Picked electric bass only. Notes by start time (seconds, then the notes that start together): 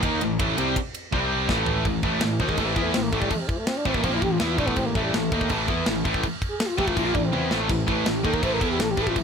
0.03 D#2
0.21 A1
0.40 A1
0.58 C2
1.12 C2
1.49 A1
1.85 A1
2.03 A1
2.22 A1
2.40 D#2
2.58 A1
2.76 E2
2.96 A1
3.13 A1
3.86 A1
4.04 A#1
4.22 A1
4.41 E2
4.58 A1
4.77 A1
4.95 A1
5.14 A1
5.32 D#2
5.50 A1
5.68 E2
5.87 A1
6.05 A1
6.79 A1
6.97 A#1
7.15 A1
7.33 E2
7.51 A1
7.70 A1
7.88 A1
8.06 A1
8.24 D#2
8.43 A1
8.61 E2
8.79 A1
8.98 A1